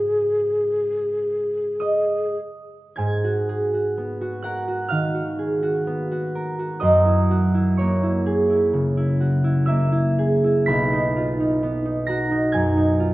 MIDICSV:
0, 0, Header, 1, 3, 480
1, 0, Start_track
1, 0, Tempo, 1094891
1, 291, Tempo, 1156069
1, 1251, Time_signature, 4, 2, 24, 8
1, 1251, Tempo, 996678
1, 1731, Tempo, 950872
1, 4611, Tempo, 1001669
1, 5091, Tempo, 921659
1, 6371, End_track
2, 0, Start_track
2, 0, Title_t, "Flute"
2, 0, Program_c, 0, 73
2, 0, Note_on_c, 0, 68, 59
2, 1004, Note_off_c, 0, 68, 0
2, 6371, End_track
3, 0, Start_track
3, 0, Title_t, "Harp"
3, 0, Program_c, 1, 46
3, 0, Note_on_c, 1, 44, 39
3, 0, Note_on_c, 1, 56, 30
3, 0, Note_on_c, 1, 66, 33
3, 0, Note_on_c, 1, 68, 30
3, 0, Note_on_c, 1, 71, 30
3, 762, Note_on_c, 1, 87, 58
3, 768, Note_on_c, 1, 75, 45
3, 983, Note_off_c, 1, 44, 0
3, 988, Note_off_c, 1, 56, 0
3, 993, Note_off_c, 1, 66, 0
3, 996, Note_off_c, 1, 68, 0
3, 1001, Note_off_c, 1, 71, 0
3, 1243, Note_on_c, 1, 92, 75
3, 1248, Note_on_c, 1, 80, 57
3, 1254, Note_on_c, 1, 44, 45
3, 1379, Note_on_c, 1, 66, 32
3, 1499, Note_on_c, 1, 68, 35
3, 1612, Note_off_c, 1, 66, 0
3, 1617, Note_on_c, 1, 66, 31
3, 1697, Note_off_c, 1, 68, 0
3, 1732, Note_on_c, 1, 59, 31
3, 1845, Note_off_c, 1, 66, 0
3, 1851, Note_on_c, 1, 66, 38
3, 1959, Note_on_c, 1, 90, 66
3, 1965, Note_on_c, 1, 78, 54
3, 1972, Note_on_c, 1, 70, 35
3, 2081, Note_off_c, 1, 66, 0
3, 2087, Note_on_c, 1, 66, 35
3, 2191, Note_on_c, 1, 89, 71
3, 2198, Note_on_c, 1, 77, 60
3, 2205, Note_on_c, 1, 51, 34
3, 2315, Note_off_c, 1, 66, 0
3, 2321, Note_on_c, 1, 66, 32
3, 2445, Note_on_c, 1, 68, 33
3, 2560, Note_off_c, 1, 66, 0
3, 2566, Note_on_c, 1, 66, 36
3, 2602, Note_off_c, 1, 87, 0
3, 2609, Note_off_c, 1, 75, 0
3, 2652, Note_off_c, 1, 68, 0
3, 2683, Note_off_c, 1, 59, 0
3, 2689, Note_on_c, 1, 59, 37
3, 2806, Note_off_c, 1, 66, 0
3, 2812, Note_on_c, 1, 66, 39
3, 2926, Note_off_c, 1, 70, 0
3, 2932, Note_on_c, 1, 70, 36
3, 3046, Note_off_c, 1, 66, 0
3, 3052, Note_on_c, 1, 66, 33
3, 3157, Note_on_c, 1, 87, 77
3, 3162, Note_on_c, 1, 75, 59
3, 3169, Note_on_c, 1, 42, 51
3, 3185, Note_off_c, 1, 77, 0
3, 3187, Note_off_c, 1, 92, 0
3, 3188, Note_off_c, 1, 51, 0
3, 3190, Note_off_c, 1, 59, 0
3, 3192, Note_off_c, 1, 44, 0
3, 3194, Note_off_c, 1, 80, 0
3, 3287, Note_on_c, 1, 64, 35
3, 3407, Note_off_c, 1, 66, 0
3, 3413, Note_on_c, 1, 66, 34
3, 3528, Note_off_c, 1, 64, 0
3, 3534, Note_on_c, 1, 64, 35
3, 3619, Note_off_c, 1, 66, 0
3, 3649, Note_on_c, 1, 85, 57
3, 3655, Note_on_c, 1, 73, 43
3, 3661, Note_on_c, 1, 58, 39
3, 3772, Note_off_c, 1, 64, 0
3, 3778, Note_on_c, 1, 64, 34
3, 3838, Note_off_c, 1, 89, 0
3, 3896, Note_on_c, 1, 68, 39
3, 3928, Note_off_c, 1, 90, 0
3, 3934, Note_off_c, 1, 78, 0
3, 3981, Note_off_c, 1, 87, 0
3, 4010, Note_off_c, 1, 64, 0
3, 4016, Note_on_c, 1, 64, 40
3, 4134, Note_on_c, 1, 49, 36
3, 4248, Note_off_c, 1, 64, 0
3, 4254, Note_on_c, 1, 64, 37
3, 4371, Note_on_c, 1, 66, 35
3, 4485, Note_off_c, 1, 64, 0
3, 4491, Note_on_c, 1, 64, 38
3, 4574, Note_off_c, 1, 66, 0
3, 4601, Note_on_c, 1, 88, 68
3, 4607, Note_off_c, 1, 58, 0
3, 4607, Note_on_c, 1, 76, 50
3, 4613, Note_on_c, 1, 58, 38
3, 4722, Note_off_c, 1, 64, 0
3, 4728, Note_on_c, 1, 64, 42
3, 4849, Note_off_c, 1, 68, 0
3, 4854, Note_on_c, 1, 68, 39
3, 4886, Note_off_c, 1, 70, 0
3, 4970, Note_off_c, 1, 64, 0
3, 4976, Note_on_c, 1, 64, 34
3, 5082, Note_on_c, 1, 95, 93
3, 5088, Note_on_c, 1, 83, 72
3, 5093, Note_on_c, 1, 35, 49
3, 5105, Note_off_c, 1, 75, 0
3, 5105, Note_off_c, 1, 88, 0
3, 5108, Note_off_c, 1, 76, 0
3, 5109, Note_off_c, 1, 42, 0
3, 5112, Note_off_c, 1, 49, 0
3, 5112, Note_off_c, 1, 58, 0
3, 5113, Note_off_c, 1, 64, 0
3, 5113, Note_off_c, 1, 68, 0
3, 5220, Note_on_c, 1, 63, 43
3, 5343, Note_on_c, 1, 65, 34
3, 5460, Note_off_c, 1, 63, 0
3, 5467, Note_on_c, 1, 63, 34
3, 5544, Note_off_c, 1, 65, 0
3, 5585, Note_on_c, 1, 59, 44
3, 5608, Note_off_c, 1, 85, 0
3, 5615, Note_off_c, 1, 73, 0
3, 5697, Note_off_c, 1, 63, 0
3, 5703, Note_on_c, 1, 63, 39
3, 5813, Note_on_c, 1, 94, 77
3, 5819, Note_on_c, 1, 82, 60
3, 5825, Note_on_c, 1, 66, 46
3, 5935, Note_off_c, 1, 63, 0
3, 5942, Note_on_c, 1, 63, 39
3, 6050, Note_on_c, 1, 92, 82
3, 6057, Note_on_c, 1, 80, 71
3, 6061, Note_on_c, 1, 42, 40
3, 6171, Note_off_c, 1, 63, 0
3, 6177, Note_on_c, 1, 63, 40
3, 6217, Note_off_c, 1, 94, 0
3, 6298, Note_on_c, 1, 65, 43
3, 6371, Note_off_c, 1, 35, 0
3, 6371, Note_off_c, 1, 42, 0
3, 6371, Note_off_c, 1, 59, 0
3, 6371, Note_off_c, 1, 63, 0
3, 6371, Note_off_c, 1, 65, 0
3, 6371, Note_off_c, 1, 66, 0
3, 6371, Note_off_c, 1, 80, 0
3, 6371, Note_off_c, 1, 82, 0
3, 6371, Note_off_c, 1, 83, 0
3, 6371, Note_off_c, 1, 92, 0
3, 6371, Note_off_c, 1, 95, 0
3, 6371, End_track
0, 0, End_of_file